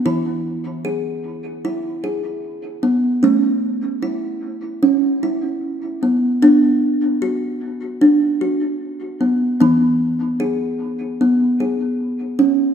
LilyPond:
<<
  \new Staff \with { instrumentName = "Kalimba" } { \time 4/4 \key e \mixolydian \tempo 4 = 75 e'4 gis'4 e'8 gis'4 b8 | cis'4 e'4 cis'8 e'4 b8 | d'4 fis'4 d'8 fis'4 b8 | b4 gis'4 b8 gis'4 cis'8 | }
  \new Staff \with { instrumentName = "Kalimba" } { \clef bass \time 4/4 \key e \mixolydian e1 | a1 | b1 | e1 | }
>>